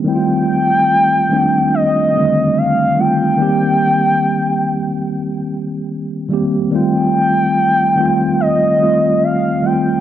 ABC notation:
X:1
M:4/4
L:1/16
Q:1/4=72
K:Fmix
V:1 name="Soft synth lead"
g8 e4 f2 g2- | g8- g2 z6 | g8 e4 f2 g2 |]
V:2 name="Tine electric piano"
[E,G,A,C=EF]4 z2 [_E,G,A,CD]3 z [D,E,G,A,C]3 z [E,G,A,CF]2 | [E,G,B,CG]6 z8 [E,G,B,CG]2 | [E,G,A,CF]4 z2 [E,G,A,CF]3 z [E,G,A,CF]3 z [E,G,A,CF]2 |]